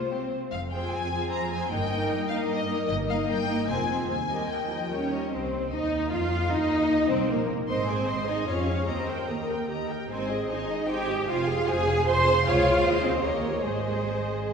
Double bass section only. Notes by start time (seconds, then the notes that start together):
0.53 F1
1.72 G1
2.89 G1
3.69 F1
4.10 D#2
5.31 C2
5.71 D#2
6.11 F2
6.50 D#2
7.10 C2
7.29 A#1
7.69 G#1
8.09 G#1
8.48 F2
8.89 D#2
9.29 D#2
9.69 D#2
10.10 G#1
10.50 G#1
10.89 G#1
11.28 F1
11.68 F1
12.07 F1
12.46 C#2
12.85 D#2
13.64 G#1